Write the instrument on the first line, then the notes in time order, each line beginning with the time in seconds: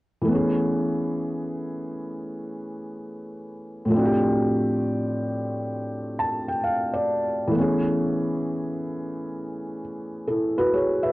felt piano
0.21 E3 A3
0.28 B3 C#4
0.35 G#4
3.85 A2 F3
3.90 A3 C4
3.96 D4 F#4
4.05 G4
6.19 A5
6.48 G5
6.64 F5
6.94 D5
7.48 E3 A3
7.55 B3 C#4
7.61 G#4
10.28 E4 A4
10.58 F#4 B4
10.74 G#4 C#5
11.03 B4 E5